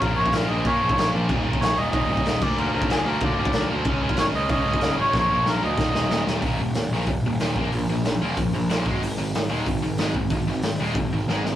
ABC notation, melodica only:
X:1
M:4/4
L:1/8
Q:1/4=187
K:Bbphr
V:1 name="Melodica"
B d f e d3 z | z2 d e e3 =d | B B A B =d3 z | z2 d e e3 d |
d2 B e4 z | z8 | z8 | z8 |
z8 |]